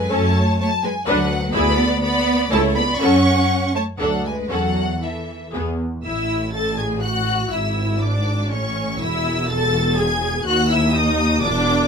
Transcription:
0.00 0.10 F#2 medium
0.00 0.11 G#3 medium
0.00 0.11 B4 loud
0.00 0.11 G#5 loud
0.11 0.52 F#2 loud
0.11 0.58 A3 loud
0.11 0.34 C#4 medium
0.11 0.34 A4 medium
0.11 0.59 C#5 loud
0.11 0.58 A5 loud
0.59 0.68 A3 loud
0.59 0.68 C#5 loud
0.59 0.83 A5 loud
0.83 0.91 G#3 loud
0.83 0.91 B4 medium
0.83 1.07 G#5 loud
1.06 1.46 D2 loud
1.06 1.54 F#3 loud
1.06 1.29 D4 loud
1.06 1.29 B4 loud
1.06 1.54 B4 loud
1.06 1.54 F#5 loud
1.54 1.95 D2 loud
1.54 2.01 B3 loud
1.54 1.77 E4 loud
1.54 1.77 G#4 medium
1.54 2.02 D5 loud
1.54 2.02 B5 loud
2.03 2.51 B3 loud
2.03 2.51 D5 loud
2.03 2.51 B5 loud
2.51 2.93 C#2 loud
2.51 2.76 A3 loud
2.51 2.74 E4 loud
2.51 2.74 A4 loud
2.51 2.76 C#5 loud
2.51 2.60 A5 loud
2.76 3.01 B3 loud
2.76 3.01 D5 loud
2.76 3.00 B5 loud
3.00 3.42 F#2 loud
3.00 3.23 C#4 medium
3.00 3.73 C#4 loud
3.00 3.23 A4 loud
3.00 3.73 F#5 loud
3.00 3.75 C#6 loud
3.75 3.83 A3 medium
3.75 3.83 C#5 medium
3.75 3.84 A5 medium
3.99 4.41 D2 medium
3.99 4.24 F#3 medium
3.99 4.23 D4 medium
3.99 4.23 A4 medium
3.99 4.25 A4 medium
3.99 4.24 F#5 loud
4.24 4.50 G#3 medium
4.24 4.51 B4 medium
4.24 4.33 G#5 medium
4.50 4.93 E2 medium
4.50 5.02 F#3 loud
4.50 4.74 C#4 medium
4.50 4.74 A4 medium
4.50 5.01 A4 medium
4.50 5.01 F#5 loud
5.02 5.53 E3 medium
5.02 5.53 A4 medium
5.02 5.54 E5 medium
5.53 5.96 E2 medium
5.53 5.77 B3 medium
5.53 5.77 G#4 medium
6.04 7.48 A1 medium
6.04 7.48 A2 medium
6.04 6.51 E4 loud
6.04 6.50 E5 medium
6.04 6.51 E6 loud
6.54 6.78 A4 medium
6.54 6.79 A5 medium
6.54 6.78 A6 loud
6.78 7.03 G#4 medium
6.78 7.03 G#5 medium
6.78 6.86 G#6 medium
7.02 7.52 F#4 loud
7.02 7.51 F#5 loud
7.02 7.51 F#6 loud
7.51 8.49 G#1 medium
7.51 8.49 G#2 medium
7.51 8.01 E4 medium
7.51 8.00 E5 medium
7.51 8.02 E6 medium
8.01 8.51 D4 medium
8.01 8.50 D5 medium
8.01 8.51 D6 loud
8.51 9.00 A1 medium
8.51 9.00 A2 medium
8.51 9.00 C#4 loud
8.51 9.00 C#5 medium
8.51 8.99 C#6 loud
8.99 10.46 E1 loud
8.99 10.46 E2 medium
8.99 9.49 E4 loud
8.99 9.49 E5 medium
8.99 9.49 E6 loud
9.48 9.97 A4 loud
9.48 9.97 A5 loud
9.48 9.97 A6 loud
9.96 10.46 G#4 loud
9.96 10.45 G#5 medium
9.96 10.45 G#6 loud
10.45 11.40 D#2 loud
10.45 11.41 D#2 loud
10.45 10.70 F#4 loud
10.45 10.70 F#5 loud
10.45 10.69 F#6 loud
10.70 10.94 E4 loud
10.70 10.95 E5 loud
10.70 10.94 E6 loud
10.93 11.42 D#4 loud
10.93 11.42 D#5 loud
10.93 11.42 D#6 loud
11.42 11.88 E1 loud
11.42 11.88 E2 loud
11.42 11.88 D4 loud
11.42 11.88 D5 loud
11.42 11.88 D6 loud

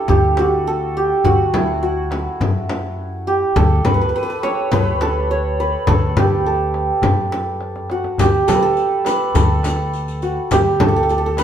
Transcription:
0.00 1.16 D4 medium
0.00 1.53 E4 medium
0.00 0.67 A4 medium
0.08 1.10 D2 medium
0.08 0.45 G4 medium
0.08 frame drum medium
0.08 tombak dum medium
0.37 1.03 F#4 medium
0.37 tombak tek medium
0.37 frame drum medium
0.52 tombak ka soft
0.67 3.56 A4 medium
0.97 1.31 G4 medium
1.24 2.26 D2 medium
1.24 1.82 F#4 medium
1.24 tombak dum medium
1.24 frame drum medium
1.54 5.01 E4 medium
1.54 frame drum medium
1.83 3.33 F#4 medium
1.97 tombak ka soft
2.11 tombak tek medium
2.11 frame drum medium
2.26 tombak ka soft
2.40 3.42 F#2 medium
2.40 tombak dum medium
2.40 frame drum medium
2.69 tombak tek medium
2.69 frame drum medium
2.84 tombak ka soft
3.27 6.18 G4 medium
3.56 3.82 D2 medium
3.56 5.01 A4 medium
3.56 frame drum medium
3.56 tombak dum medium
3.85 4.11 D2 medium
3.85 3.94 B4 medium
3.85 frame drum medium
3.85 tombak dum medium
3.94 4.01 B4 medium
4.01 4.09 B4 medium
4.09 4.15 B4 medium
4.16 4.22 B4 medium
4.23 4.29 B4 medium
4.30 4.72 B4 medium
4.30 tombak ka soft
4.43 5.30 C#5 medium
4.43 tombak tek medium
4.43 frame drum medium
4.57 tombak ka soft
4.72 5.74 D2 medium
4.72 5.60 B4 loud
4.72 frame drum medium
4.72 tombak dum medium
5.01 5.88 A4 medium
5.01 tombak tek medium
5.01 frame drum medium
5.16 tombak ka soft
5.31 7.86 C#5 medium
5.60 8.33 B4 medium
5.87 6.89 D2 medium
5.87 6.46 A4 medium
5.87 tombak dum medium
5.87 frame drum medium
6.16 7.97 G4 medium
6.16 tombak dum medium
6.16 frame drum medium
6.30 tombak ka soft
6.46 8.47 A4 medium
6.74 tombak tek medium
6.88 tombak ka soft
7.02 8.05 F#2 medium
7.02 tombak dum medium
7.02 frame drum medium
7.32 frame drum medium
7.46 tombak ka soft
7.61 tombak tek medium
7.76 tombak ka medium
7.90 8.26 F#4 medium
7.90 tombak tek medium
8.04 tombak ka medium
8.18 8.45 D2 medium
8.18 10.29 G4 medium
8.18 riq medium
8.18 tombak dum medium
8.18 frame drum medium
8.48 8.74 D2 medium
8.48 8.62 A4 medium
8.48 riq medium
8.48 frame drum medium
8.54 9.05 B4 medium
8.62 9.34 A4 medium
8.77 riq soft
8.91 tombak ka soft
9.05 11.38 B4 medium
9.05 riq soft
9.05 tombak tek medium
9.05 frame drum medium
9.19 tombak ka soft
9.34 10.37 D2 medium
9.34 10.80 A4 medium
9.34 riq medium
9.34 tombak dum medium
9.34 frame drum medium
9.63 riq soft
9.63 tombak tek medium
9.63 frame drum medium
9.78 tombak ka soft
9.93 riq soft
10.08 riq soft
10.22 10.58 F#4 medium
10.22 riq soft
10.51 11.44 D2 medium
10.51 11.44 G4 medium
10.51 riq medium
10.51 tombak dum medium
10.51 frame drum medium
10.80 10.88 A4 medium
10.80 frame drum medium
10.80 tombak dum medium
10.88 10.96 A4 medium
10.96 11.03 A4 medium
11.03 11.10 A4 medium
11.09 11.18 A4 medium
11.09 riq soft
11.18 11.26 A4 medium
11.23 11.44 A4 medium
11.23 tombak ka soft
11.37 11.44 B4 loud
11.37 riq soft
11.37 tombak tek medium
11.37 frame drum medium

